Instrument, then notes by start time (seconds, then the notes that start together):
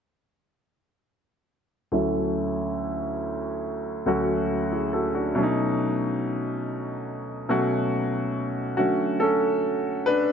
grand piano
1.92 D2 F#3 A3 C#4 E4
4.06 D2 F#3 A3 C#4 F#4
4.72 E4 G#4
4.93 F#4 A4
5.15 D4 F#4
5.35 B2 F#3 A3 C#4 D4
5.43 D#4
7.49 B2 F#3 A3 C#4 F#4
8.77 D3 F#3 A3 C#4 F#4
9.20 C#4 A4
10.06 D4 B4